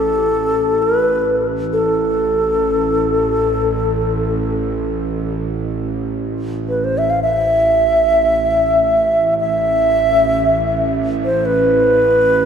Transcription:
Already playing: A1 A4
0.82 B4
1.73 A4
4.64 A1
6.69 B4
6.84 C5
6.98 E5
7.10 F5
7.22 E5
9.40 E5
11.25 C5
11.46 B4

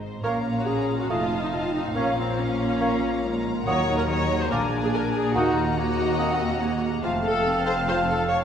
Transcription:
Already playing: G#1 G#2 G#3 C4 G#4
0.02 C5
0.23 A#1 A#2 A#3 C#4 A#4 C#5 F5 A#5
0.45 F4
0.57 F#4
0.66 C#4 D#4 G#4
0.89 F4
0.99 F#4
1.09 F1 F2 A3 D#4 F4 D#5 F5 A5
1.31 F4
1.42 D#4
1.53 C4 D#4 F4
1.74 D#4 F4
1.95 A#1 A#2 A#3 C#4 F4 C#5 F5 A#5
2.17 C4 F4
2.38 C#4 D#4
2.59 F4
2.80 F3 A#3 C#5 F5
3.02 F4
3.23 G#3 D#4
3.44 F4
3.65 D#2 D#3 F#3 A#3 F#4 C#5 D#5 F#5
3.87 A#4
3.98 A#4
4.08 G#4 C#5
4.31 A#4
4.42 C5
4.51 A#1 A#2 A#3 D4 G#4 A#4 D5 G#5
4.73 G#4
4.84 G#4
4.94 F#4 A#4
5.15 G#4
5.34 D#2 D#3 A#3 D#4 F#4 D#5 F#5 A#5
5.56 F4 A#4
5.77 A#3 F#4 G#4
5.98 A#4
6.18 A#3 C4 D#5 F#5
6.40 A#4
6.61 A#3 G#4
6.83 A#4
7.03 F1 F2 F3 A3 C4 F4 F5 A5
7.24 A4
7.45 C4 F#4
7.66 A4 C5
7.86 A3 C4 F4 C5
8.08 A4
8.29 F#4 C#5

